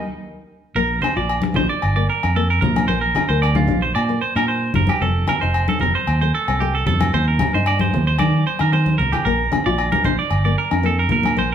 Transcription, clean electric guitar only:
0.76 A#4
1.02 C5
1.17 D5
1.43 muted clean electric guitar stroke
1.56 C5
1.69 D5
1.96 D5
2.10 A#4
2.36 A4
2.50 A#4
2.61 A#4
2.88 C5
3.01 A#4
3.29 C5
3.42 D5
3.56 F4
3.82 C5
3.95 D5
4.21 C5
4.36 A#4
4.48 C5
4.76 A#4
4.89 G4
5.02 A4
5.29 A#4
5.41 C5
5.69 A4
5.81 A#4
5.95 C5
6.21 C5
6.35 A4
6.60 G4
6.75 A4
6.87 A4
7.14 C5
7.28 A#4
7.54 C5
7.67 D5
7.81 C5
8.07 C5
8.19 D5
8.47 C5
8.61 A#4
8.73 C5
8.98 A#4
9.12 G4
9.25 A#4
9.66 D5
9.92 A#4
10.05 C5
10.19 D5
10.45 D5
10.58 A#4
10.86 A4
10.99 A#4
11.12 A#4
11.39 C5

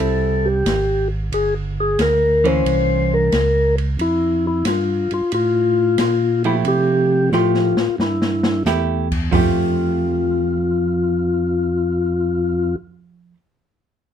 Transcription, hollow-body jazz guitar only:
Already playing: G3 C4 E4
2.44 E3 A#3 C#4
6.45 F3 A3 E4 G4
7.33 F3 A3 G4
8.67 A3 E4 G4
9.31 F3 A3 G4

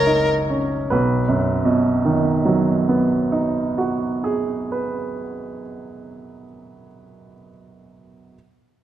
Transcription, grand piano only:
Already playing: F#1 C#2 C#4 D#4 A#4 C#5 D#5 E5
0.06 D#4
0.50 C#4
0.90 B1 B4
1.28 F#2
1.65 B2
2.05 D#3
2.45 F#3
2.89 B3
3.32 D#4
3.78 F#4
4.24 G#4
4.72 B4

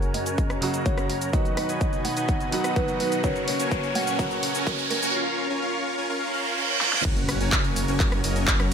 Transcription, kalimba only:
Already playing: A#4
0.14 D#5
0.86 C#5
1.10 C#5
1.34 D#5
1.57 D#5
2.05 F#5
2.76 B4
3.00 B4
3.24 C#5
3.48 C#5
3.95 F#5
4.67 A#4
4.90 A#4

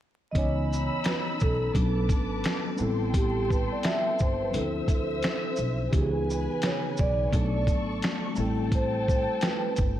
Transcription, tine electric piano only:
0.32 E3 B3 C#4
0.37 D#4 G#5
1.74 F#3 B3 C#4 D4 A4
2.76 G3 B3 C4
2.81 E4 A4
4.51 F3 C4 D4
4.55 E4 A4
5.91 C#3 D#3 B3
5.95 E3 D#4 G#4
7.31 F#3 A3 B3 D4 A4
8.34 G3 A3 C4
8.38 E4 A4

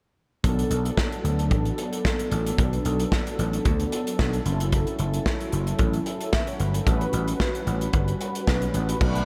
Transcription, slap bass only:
0.44 B1
0.70 B1
1.24 D2
1.51 A1
2.32 A1
2.58 B1
2.85 B1
3.39 A1
3.65 D2
4.19 B1
4.45 F#1
4.99 F#1
5.53 F#1
5.79 A1
6.60 G1
6.87 A1
7.13 A1
7.67 A1
7.93 G1
8.47 B1
8.74 A1
9.01 B1

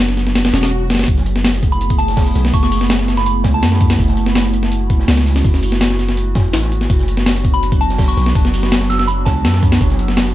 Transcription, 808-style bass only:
Already playing: F#1
0.54 E1
0.90 F#1
1.08 F#1
2.36 B1
2.54 F#1
3.45 C#2
3.63 F#2
3.99 F#1
5.08 C#2
5.45 F#1
6.53 A1
6.72 G#1
6.90 F#1
8.17 B1
8.35 F#1
9.26 C#2
9.44 F#2
9.81 F#1

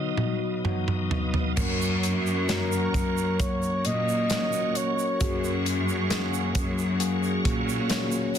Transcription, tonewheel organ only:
Already playing: B4 D#5 F5 D#6
1.56 A#4 C#5 F#5 C#6

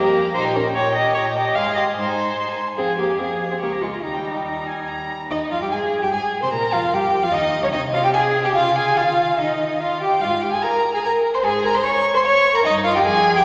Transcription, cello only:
Already playing: F2
0.35 A#2
0.76 A#2
1.16 A#2
1.57 G#2
1.97 G#2
2.38 G#2
2.78 F2
3.20 F2
3.61 C#2
4.03 D#2
4.46 D#2
4.88 D#2
5.30 D#2
5.51 F2
5.61 G2
5.72 G#2
6.03 G2
6.12 G#2
6.42 C3
6.52 A#2
6.73 F2
6.92 G2
7.22 F2
7.33 D#2
7.63 C#2
7.73 C3
8.55 C#3
8.96 D#3
10.21 G#2
11.45 G#2
12.65 G2
13.06 F2

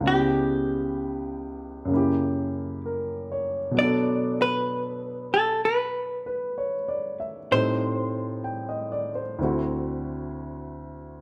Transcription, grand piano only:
0.00 C#2 C#3
0.06 B3 E4
0.11 G4
1.85 F#2 C#3
1.91 A#3 E4
1.97 G4
2.86 A#4
3.32 C#5
3.71 B2 F#3
3.77 B3 D4
3.83 A4
6.26 B4
6.58 C#5
6.88 D5
7.20 E5
7.51 A2 G3 C4 D#4 A4
8.44 G5
8.69 D#5
8.92 D5
9.15 C5
9.39 D2 D3 C4
9.43 E4 F#4

